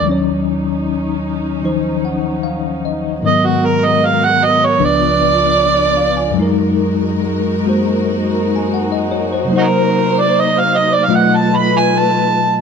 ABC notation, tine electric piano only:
X:1
M:4/4
L:1/16
Q:"Swing" 1/4=76
K:Gblyd
V:1 name="Tine electric piano"
z8 z2 g2 f2 e2- | e z8 z3 d =d f a | z8 z2 b a g e d c | z16 |]
V:2 name="Tine electric piano" clef=bass
[E,,E,G,Dd]8 [E,F,Ec]8 | [A,,E,G,_CB]8 [D,,D,F,=D_c]8 | [G,,G,A,EB]6 [A,B,Gc]8- [A,B,Gc]2 | [C,G,B,Ec]8 [=B,,^F,=A,^E^d]8 |]